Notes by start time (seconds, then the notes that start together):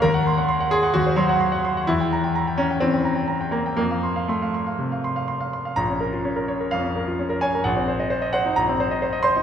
0.02 D#2 A#4
0.14 F#5
0.27 C6
0.38 F#5
0.49 C6
0.60 F#5
0.71 G#4 C6
0.83 F#5
0.94 D#2 F#4
1.06 C5
1.16 F#3 C6
1.29 F#5
1.41 C6
1.52 F#5
1.65 C6
1.77 F#5
1.87 E2 E4
2.00 G5
2.13 A#5
2.24 G5
2.35 A#5
2.47 G5
2.58 C#4 A#5
2.71 G5
2.80 E3 C4
2.93 G5
3.05 A#5
3.16 G5
3.28 A#5
3.41 G5
3.51 A#3 A#5
3.66 G5
3.77 F2 A#3
3.91 F5
4.03 C6
4.16 F5
4.28 A3 C6
4.42 F5
4.54 C6
4.67 F5
4.79 C3
4.92 F5
5.04 C6
5.16 F5
5.28 C6
5.40 F5
5.53 C6
5.65 F5
5.76 A#1 A#5
5.90 C#4
6.00 A#4
6.13 F4
6.25 C#4
6.36 A#4
6.48 C#5
6.61 A#4
6.71 F2 F5
6.84 C#4
6.96 A#4
7.07 F4
7.19 C#4
7.29 A#4
7.41 C#5 G#5
7.55 A#4
7.64 A#1 F#5
7.76 C4
7.88 C5
8.00 D#5
8.10 C5
8.22 D#5
8.33 C5 F#5
8.46 D#4
8.56 A#1 A#5
8.69 C4
8.80 C5
8.91 D#5
9.02 C5
9.13 D#5
9.23 C5 C6
9.36 D#4